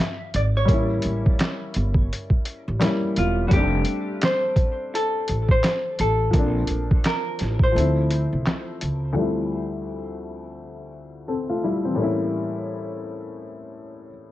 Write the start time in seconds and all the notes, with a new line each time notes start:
Already playing: G3 C4 D4 F4 E5
0.00 closed hi-hat
0.34 G#1 D5, closed hi-hat
0.57 C#5
0.65 A1 G3 A#3, kick, closed hi-hat
0.71 C#4 E4
1.02 A1, closed hi-hat
1.26 kick
1.39 snare, clap, closed hi-hat
1.74 G1, closed hi-hat
1.94 kick
2.13 closed hi-hat
2.30 kick
2.45 closed hi-hat
2.68 A1
2.80 G3 A#3 C#4, snare, clap, closed hi-hat
2.84 E4
3.16 E1 F4, closed hi-hat
3.48 F1 G3 A3 F#4, kick, closed hi-hat
3.53 C4 D4 G4
3.85 closed hi-hat
4.21 C5, snare, clap, closed hi-hat
4.56 kick, closed hi-hat
4.95 A4, closed hi-hat
5.28 A1, closed hi-hat
5.49 C5, kick
5.64 snare, clap, closed hi-hat
5.99 A1 A4, closed hi-hat
6.31 A#1 F3 A#3, kick, closed hi-hat
6.36 C4 D4
6.67 A#1, closed hi-hat
6.91 kick
7.04 A#4, snare, clap, closed hi-hat
7.39 A1, snare, closed hi-hat
7.59 kick
7.63 C5
7.72 F3 A3
7.76 D2 C4 E4, closed hi-hat
8.10 closed hi-hat
8.33 C2
8.46 snare, clap, closed hi-hat
8.81 C#2, closed hi-hat
9.13 D2 F3 G3
9.17 A3 C4 E4
11.28 C4 A4
11.49 A3 F4
11.64 G3 E4
11.85 E3 C4
11.95 A2 G3
11.99 A#3 C#4
12.03 E4